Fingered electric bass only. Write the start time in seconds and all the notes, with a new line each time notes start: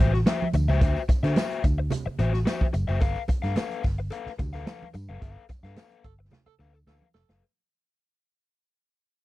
0.00 A1
0.54 D2
0.68 C#2
0.81 D2
1.09 muted fingered electric bass stroke
1.23 D3
1.64 D2
2.06 muted fingered electric bass stroke
2.19 A1
2.74 F#1
2.88 F#1
3.02 G1
3.29 muted fingered electric bass stroke
3.44 G2
3.84 G1
4.26 muted fingered electric bass stroke
4.39 D2
4.94 G2
5.09 F#1
5.22 G1
5.49 muted fingered electric bass stroke
5.63 G2
6.04 G1
6.46 muted fingered electric bass stroke
6.59 D2
6.87 D2
7.15 F1
7.29 F#1